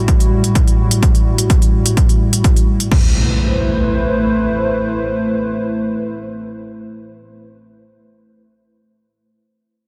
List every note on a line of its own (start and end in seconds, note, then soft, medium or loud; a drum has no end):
0.00 2.88 A2 medium
0.00 2.87 G3 medium
0.00 2.88 E4 medium
0.00 2.87 F#4 medium
0.08 kick loud
0.08 closed hi-hat medium
0.20 closed hi-hat soft
0.44 closed hi-hat medium
0.55 kick loud
0.55 closed hi-hat medium
0.68 closed hi-hat soft
0.91 closed hi-hat medium
1.03 kick loud
1.03 closed hi-hat medium
1.15 closed hi-hat soft
1.38 closed hi-hat medium
1.50 kick loud
1.50 closed hi-hat medium
1.62 closed hi-hat soft
1.86 closed hi-hat medium
1.97 kick loud
1.97 closed hi-hat medium
2.09 closed hi-hat soft
2.33 closed hi-hat medium
2.44 kick loud
2.44 closed hi-hat medium
2.56 closed hi-hat soft
2.80 closed hi-hat medium
2.91 7.45 A3 medium
2.91 7.45 E4 medium
2.91 7.45 B4 medium
2.91 7.45 C5 medium
2.91 kick loud
2.91 crash medium
2.91 impact medium